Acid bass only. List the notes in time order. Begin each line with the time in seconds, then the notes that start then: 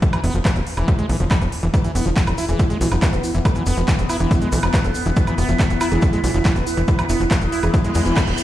0.13 E3
0.24 B3
0.34 F3
0.45 E3
0.77 E3
0.88 F3
0.99 G#3
1.09 E3
1.20 F3
1.31 E3
1.63 E3
1.84 E3
1.95 B3
2.06 F3
2.17 E3
2.38 E4
2.49 E3
2.59 F3
2.70 G#3
2.81 E3
2.92 F3
3.02 E3
3.34 E3
3.56 E3
3.67 B3
3.77 F3
3.88 E3
4.09 E4
4.20 E3
4.31 F3
4.42 G#3
4.52 E3
4.63 F3
4.74 E3
5.06 E3
5.27 E3
5.38 B3
5.49 F3
5.59 E3
5.81 E4
5.92 E3
6.02 F3
6.13 G#3
6.24 E3
6.34 F3
6.45 E3
6.77 E3
6.99 E3
7.09 B3
7.20 F3
7.31 E3
7.52 E4
7.63 E3
7.74 F3
7.84 G#3
7.95 G#3
8.06 E3
8.17 B3